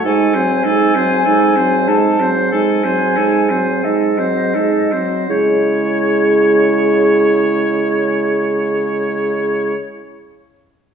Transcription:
<<
  \new Staff \with { instrumentName = "Flute" } { \time 4/4 \key cis \minor \tempo 4 = 42 gis''4. a''8 gis''4 dis''4 | cis''1 | }
  \new Staff \with { instrumentName = "Oboe" } { \time 4/4 \key cis \minor a'16 bis'16 a'16 bis'16 a'16 bis'16 a'16 bis'16 a'16 bis'16 a'16 bis'16 a'16 bis'16 a'16 bis'16 | cis''1 | }
  \new Staff \with { instrumentName = "Clarinet" } { \time 4/4 \key cis \minor dis'16 bis16 dis'16 bis16 dis'16 bis16 dis'16 bis16 dis'16 bis16 dis'16 bis16 dis'16 bis16 dis'16 bis16 | e'1 | }
  \new Staff \with { instrumentName = "French horn" } { \clef bass \time 4/4 \key cis \minor gis16 fis16 gis16 fis16 gis16 fis16 gis16 fis16 gis16 fis16 gis16 fis16 gis16 fis16 gis16 fis16 | gis1 | }
  \new Staff \with { instrumentName = "Bassoon" } { \clef bass \time 4/4 \key cis \minor gis,2.~ gis,8 r8 | cis1 | }
>>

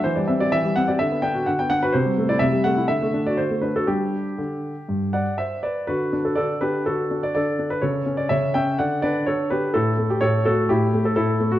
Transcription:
<<
  \new Staff \with { instrumentName = "Grand piano" } { \time 4/4 \key g \major \tempo 4 = 125 c''16 d''16 e''16 d''16 e''8 fis''16 d''16 e''8 g''8 fis''16 g''16 fis''16 b'16 | c''8. d''16 e''8 fis''8 e''8. d''16 c''8 b'16 a'16 | g'2~ g'8 <d'' fis''>8 <c'' e''>8 <b' d''>8 | \key d \major <fis' b'>8. a'16 <a' d''>8 <g' b'>8 <fis' a'>8. d''16 <a' d''>8. b'16 |
<a' cis''>8. d''16 <cis'' e''>8 <e'' g''>8 <d'' fis''>8 <b' d''>8 <a' cis''>8 <g' b'>8 | <e' a'>8. g'16 <a' cis''>8 <fis' a'>8 <e' g'>8. a'16 <e' a'>8. fis'16 | }
  \new Staff \with { instrumentName = "Grand piano" } { \time 4/4 \key g \major e16 g16 c'16 g'16 e16 g16 c'16 g'16 d16 b16 d'16 fis'16 d16 b16 d'16 fis'16 | c16 g16 a16 e'16 c16 g16 a16 e'16 d16 a16 d'16 fis'16 d16 a16 d'16 fis'16 | <g d'>4 d4 g,4 r4 | \key d \major d8 d'8 d8 d'8 d8 d'8 d8 d'8 |
cis8 cis'8 cis8 cis'8 d8 d'8 d8 d'8 | a,8 a8 a,8 a8 a,8 a8 a,8 a8 | }
>>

